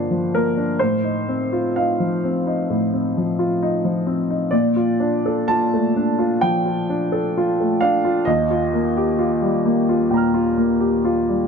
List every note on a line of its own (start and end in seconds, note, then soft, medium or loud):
0.00 0.82 D3 soft
0.00 0.11 F3 soft
0.00 0.36 A#3 soft
0.00 0.57 D4 soft
0.00 0.81 F4 soft
0.00 0.32 C5 medium
0.00 0.81 D5 medium
0.00 0.81 D#5 medium
0.11 0.47 F3 soft
0.35 0.71 A#3 soft
0.35 0.80 A#4 medium
0.57 0.80 D4 soft
0.79 2.65 A2 medium
0.79 1.77 C5 medium
1.04 1.43 D#4 soft
1.28 1.67 C4 soft
1.53 1.91 F4 soft
1.76 2.15 D#4 soft
1.76 4.06 F5 medium
2.00 2.37 F3 soft
2.24 2.60 C4 soft
2.47 2.83 D#4 soft
2.70 4.49 A2 soft
2.93 3.29 C4 soft
3.17 3.53 F3 soft
3.39 3.75 F4 soft
3.63 3.98 D#4 medium
3.85 4.21 F3 soft
4.07 4.43 C4 soft
4.30 4.53 D#4 soft
4.51 6.38 A#2 medium
4.51 5.48 D5 medium
4.76 5.15 F4 soft
5.00 5.39 D4 soft
5.26 5.63 A4 soft
5.48 5.86 F4 soft
5.48 6.42 A5 medium
5.74 6.10 A3 soft
5.96 6.33 D4 soft
6.19 6.56 F4 soft
6.41 6.80 F3 soft
6.41 7.81 G5 medium
6.66 7.03 F4 soft
6.90 7.26 D4 soft
7.12 7.49 A4 medium
7.37 7.73 F4 medium
7.60 7.96 A3 soft
7.81 8.18 D4 medium
7.81 8.26 F5 medium
8.05 8.27 F4 medium
8.25 10.08 D#2 medium
8.25 11.47 D#5 medium
8.50 8.87 F4 medium
8.74 9.10 A#3 medium
8.97 9.34 G4 medium
9.19 9.56 F4 soft
9.42 9.79 G3 soft
9.66 10.03 A#3 medium
9.89 10.26 F4 soft
10.11 10.49 A#2 soft
10.11 11.47 G5 soft
10.11 11.47 A#5 soft
10.17 11.47 F6 soft
10.34 10.72 F4 soft
10.58 10.96 A#3 medium
10.80 11.19 G4 soft
11.05 11.43 F4 medium
11.29 11.47 G3 soft